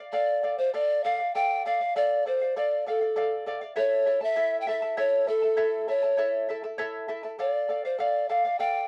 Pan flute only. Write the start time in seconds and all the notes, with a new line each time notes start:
0.13 D5
0.58 C5
0.74 D5
1.04 F5
1.35 G5
1.66 F5
1.97 D5
2.28 C5
2.57 D5
2.88 A4
3.78 C#5
4.24 E5
4.61 G5
4.69 E5
4.99 C#5
5.29 A4
5.89 C#5
7.41 D5
7.85 C5
8.00 D5
8.29 F5
8.59 G5